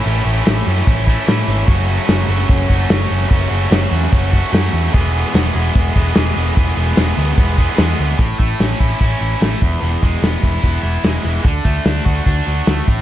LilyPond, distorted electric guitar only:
\new Staff \with { instrumentName = "Distorted electric guitar" } { \time 4/4 \key a \major \tempo 4 = 147 <a, e a cis' e'>8 <a cis' e'>8 <a, e a cis' e'>8 <a cis' e'>4 <a cis' e'>8 <e a cis' e'>4 | <fis, cis fis a cis' fis'>8 <fis a cis' fis'>8 <fis, cis fis a cis' fis'>8 <fis a cis' fis'>4 <fis a cis' fis'>8 <fis a cis' fis'>4 | <fis, cis fis a cis' fis'>8 <fis a cis' fis'>8 <fis, cis fis a cis' fis'>8 <fis a cis' fis'>4 <fis a cis' fis'>8 <fis a cis' fis'>4 | <e, b, e gis b gis'>8 <e gis b gis'>8 <e, b, e gis b gis'>8 <e gis b gis'>4 <e gis b gis'>8 <e gis b gis'>4 |
<e, b, e gis b gis'>8 <e gis b gis'>8 <e, b, e gis b gis'>8 <e gis b gis'>4 <e gis b gis'>8 <e gis b gis'>4 | a,8 a8 cis'8 e'8 cis'8 e'8 a8 e,8 | e,8 gis8 b8 e'8 b8 e'8 gis8 e8 | d8 a8 d'8 fis'8 d'8 fis'8 a8 a,8 | }